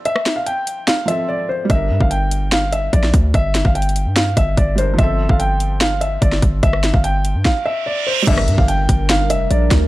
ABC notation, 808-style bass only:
X:1
M:4/4
L:1/16
Q:1/4=146
K:Gdor
V:1 name="808-style bass" clef=bass
z16 | G,,,2 G,, G,,,8- G,,, B,,,2 D,,2 | G,,,3 G,,,4 G,,3 G,,,2 G,,,4 | G,,,3 G,,,8- G,,, G,,,2 G,,,2 |
G,,,3 G,,,4 G,, z8 | G,,,2 G,, G,,,3 G,,,4 F,,,2 B,,,2 D,,2 |]